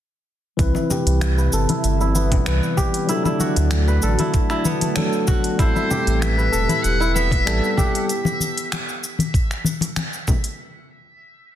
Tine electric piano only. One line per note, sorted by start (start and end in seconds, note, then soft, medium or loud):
0.57 2.42 E3 medium
0.57 2.43 C4 medium
0.57 2.44 B4 medium
2.45 3.05 E3 medium
2.45 3.06 B4 loud
3.07 4.92 F#3 medium
3.07 4.93 D4 medium
3.07 4.94 A4 medium
4.96 5.55 F#3 medium
4.96 5.56 D4 medium
4.96 5.56 A4 loud
5.58 7.42 G3 medium
5.58 7.43 C4 medium
5.62 7.44 A4 medium
7.45 8.05 G3 medium
7.45 8.06 A4 loud